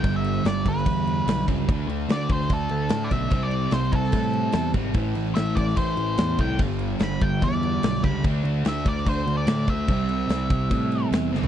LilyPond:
<<
  \new Staff \with { instrumentName = "Lead electric guitar" } { \time 4/4 \key g \mixolydian \tempo 4 = 146 g''16 e''8. d''8 b'2 r8 | r4 d''8 c''8 a'4~ \tuplet 3/2 { a'8 d''16 e''8.~ } | e''16 d''8. c''8 a'2 r8 | r4 e''8 d''8 c''4. g''8 |
r4 b''8 g''8 d''4. b''8 | r4 e''8 d''8 c''8. d''8. e''8~ | e''2. r4 | }
  \new Staff \with { instrumentName = "Distorted electric guitar" } { \clef bass \time 4/4 \key g \mixolydian <g, d g>2.~ <g, d g>8 <g, d g>8 | <d a d'>2.~ <d a d'>8 <d a d'>8 | <c g c'>2.~ <c g c'>8 <c g c'>8 | <a, e a>2.~ <a, e a>8 <a, e a>8 |
<g, d g>2.~ <g, d g>8 <g, d g>8 | <d a d'>2.~ <d a d'>8 <d a d'>8 | <c g c'>2.~ <c g c'>8 <c g c'>8 | }
  \new Staff \with { instrumentName = "Picked electric bass" } { \clef bass \time 4/4 \key g \mixolydian g,,4 g,,8 g,,8 e,4 b,,8 cis,8 | d,8 d,8 d,8 d,8 d,8 d,8 a,8 b,,8 | c,4 c,8 c,8 a,4 e,8 gis,,8 | a,,8 a,,8 a,,8 a,,8 a,,8 a,,8 e,8 c,8 |
g,,4 g,,8 g,,8 e,4 b,,8 cis,8 | d,8 d,8 d,8 d,8 d,8 d,8 a,8 d,8 | c,4 c,8 c,8 a,4 e,8 g,,8 | }
  \new DrumStaff \with { instrumentName = "Drums" } \drummode { \time 4/4 <cymc bd>8 cymc8 <cymc sn>8 <cymc bd>16 sn16 <cymc bd>8 cymc8 <cymc sn>8 <cymc bd>8 | <cymc bd>8 cymc8 <cymc sn>8 <cymc bd>16 sn16 <cymc bd>8 cymc8 <cymc sn>8 <cymc bd>8 | <cymc bd>8 cymc8 <cymc sn>8 <cymc bd>16 sn16 <cymc bd>8 cymc8 <cymc sn>8 <cymc bd>8 | <cymc bd>8 cymc8 <cymc sn>8 <cymc bd>16 sn16 <cymc bd>8 cymc8 <cymc sn>8 <cymc bd>8 |
<cymc bd>8 cymc8 <cymc sn>16 sn16 <cymc bd>8 <cymc bd>8 cymc8 <cymc sn>8 <cymc bd>8 | <cymc bd>8 cymc8 <cymc sn>8 <cymc bd>16 sn16 <cymc bd>8 cymc8 <cymc sn>8 <cymc bd>8 | <cymc bd>8 cymc8 <cymc sn>8 <cymc bd>8 <cymc bd>8 cymc8 <cymc sn>8 sn16 tomfh16 | }
>>